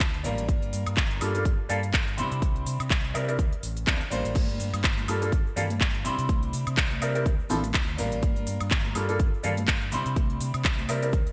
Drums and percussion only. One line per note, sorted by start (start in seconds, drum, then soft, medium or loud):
0.00 kick loud
0.00 clap loud
0.00 closed hi-hat medium
0.00 shaker soft
0.14 closed hi-hat soft
0.24 open hi-hat loud
0.24 shaker medium
0.38 closed hi-hat medium
0.38 shaker soft
0.49 kick loud
0.49 closed hi-hat medium
0.49 shaker soft
0.62 closed hi-hat soft
0.73 open hi-hat loud
0.73 shaker medium
0.86 closed hi-hat medium
0.86 high woodblock medium
0.86 shaker soft
0.97 kick loud
0.97 clap loud
0.97 closed hi-hat medium
0.97 shaker soft
1.11 closed hi-hat soft
1.21 open hi-hat loud
1.21 high woodblock medium
1.21 shaker medium
1.35 closed hi-hat medium
1.35 shaker soft
1.45 kick loud
1.45 closed hi-hat medium
1.45 shaker soft
1.70 open hi-hat loud
1.70 shaker medium
1.83 closed hi-hat medium
1.83 shaker soft
1.94 kick loud
1.94 clap loud
1.94 closed hi-hat medium
1.94 shaker soft
2.08 closed hi-hat soft
2.18 open hi-hat loud
2.18 shaker medium
2.32 closed hi-hat medium
2.32 shaker soft
2.42 kick loud
2.42 closed hi-hat medium
2.42 shaker soft
2.56 closed hi-hat soft
2.66 open hi-hat loud
2.66 shaker medium
2.80 closed hi-hat medium
2.80 high woodblock medium
2.80 shaker soft
2.90 kick loud
2.90 clap loud
2.90 closed hi-hat medium
2.90 shaker soft
3.04 closed hi-hat soft
3.15 open hi-hat loud
3.15 high woodblock medium
3.15 shaker medium
3.29 closed hi-hat medium
3.29 shaker soft
3.39 kick loud
3.39 closed hi-hat medium
3.39 shaker soft
3.53 closed hi-hat soft
3.63 open hi-hat loud
3.63 shaker medium
3.77 closed hi-hat medium
3.77 shaker soft
3.87 kick loud
3.87 clap loud
3.87 closed hi-hat medium
3.87 shaker soft
4.01 closed hi-hat soft
4.11 open hi-hat loud
4.11 shaker medium
4.25 closed hi-hat medium
4.25 shaker soft
4.35 kick loud
4.35 closed hi-hat medium
4.35 crash medium
4.35 high conga loud
4.35 shaker soft
4.35 shaker medium
4.49 closed hi-hat soft
4.49 shaker soft
4.60 open hi-hat loud
4.60 shaker loud
4.60 shaker medium
4.74 closed hi-hat medium
4.74 high woodblock medium
4.74 shaker soft
4.84 kick loud
4.84 clap loud
4.84 closed hi-hat medium
4.84 shaker soft
4.97 closed hi-hat soft
4.97 high conga medium
5.08 open hi-hat loud
5.08 high woodblock medium
5.08 shaker medium
5.08 shaker loud
5.22 closed hi-hat medium
5.22 shaker soft
5.32 kick loud
5.32 closed hi-hat medium
5.32 shaker soft
5.32 shaker medium
5.47 shaker soft
5.57 open hi-hat loud
5.57 low conga loud
5.57 shaker medium
5.57 shaker loud
5.70 closed hi-hat medium
5.70 high conga loud
5.70 shaker soft
5.81 kick loud
5.81 clap loud
5.81 closed hi-hat medium
5.81 shaker medium
5.81 shaker soft
5.95 closed hi-hat soft
6.05 open hi-hat loud
6.05 shaker loud
6.05 shaker medium
6.18 closed hi-hat medium
6.18 shaker soft
6.29 kick loud
6.29 closed hi-hat medium
6.29 high conga loud
6.29 shaker medium
6.29 shaker soft
6.43 closed hi-hat soft
6.43 shaker soft
6.53 open hi-hat loud
6.53 shaker medium
6.66 closed hi-hat medium
6.66 high woodblock medium
6.66 shaker soft
6.77 kick loud
6.77 clap loud
6.77 closed hi-hat medium
6.77 shaker soft
6.91 closed hi-hat soft
6.91 high conga medium
7.02 open hi-hat loud
7.02 high woodblock medium
7.02 shaker medium
7.15 closed hi-hat medium
7.15 shaker soft
7.25 kick loud
7.25 closed hi-hat medium
7.25 shaker medium
7.25 shaker soft
7.39 shaker soft
7.49 open hi-hat loud
7.49 low conga loud
7.49 shaker medium
7.64 closed hi-hat medium
7.64 high conga loud
7.64 shaker soft
7.74 kick loud
7.74 clap loud
7.74 closed hi-hat medium
7.74 shaker soft
7.88 closed hi-hat soft
7.98 open hi-hat loud
7.98 shaker medium
7.98 shaker loud
8.12 closed hi-hat medium
8.12 shaker soft
8.23 kick loud
8.23 closed hi-hat medium
8.23 high conga loud
8.23 shaker medium
8.23 shaker soft
8.36 closed hi-hat soft
8.36 shaker soft
8.47 open hi-hat loud
8.47 shaker medium
8.61 closed hi-hat medium
8.61 high woodblock medium
8.61 shaker soft
8.71 kick loud
8.71 clap loud
8.71 closed hi-hat medium
8.71 shaker soft
8.85 closed hi-hat soft
8.85 high conga medium
8.95 open hi-hat loud
8.95 high woodblock medium
8.95 shaker medium
9.09 closed hi-hat medium
9.09 shaker soft
9.19 kick loud
9.19 closed hi-hat medium
9.19 shaker medium
9.19 shaker soft
9.34 shaker soft
9.43 open hi-hat loud
9.43 low conga medium
9.43 shaker medium
9.57 closed hi-hat medium
9.57 high conga loud
9.57 shaker soft
9.67 kick loud
9.67 clap loud
9.67 closed hi-hat medium
9.67 shaker medium
9.67 shaker soft
9.82 closed hi-hat soft
9.92 open hi-hat loud
9.92 shaker loud
9.92 shaker medium
10.06 closed hi-hat medium
10.06 shaker soft
10.16 kick loud
10.16 closed hi-hat medium
10.16 high conga loud
10.16 shaker soft
10.30 closed hi-hat soft
10.30 shaker soft
10.41 open hi-hat loud
10.41 shaker medium
10.54 closed hi-hat medium
10.54 high woodblock medium
10.54 shaker soft
10.65 kick loud
10.65 clap loud
10.65 closed hi-hat medium
10.65 shaker soft
10.78 closed hi-hat soft
10.78 high conga medium
10.78 shaker soft
10.89 open hi-hat loud
10.89 high woodblock medium
10.89 shaker medium
11.02 closed hi-hat medium
11.02 shaker soft
11.12 kick loud
11.12 closed hi-hat medium
11.12 shaker medium
11.12 shaker soft
11.27 closed hi-hat soft
11.27 shaker soft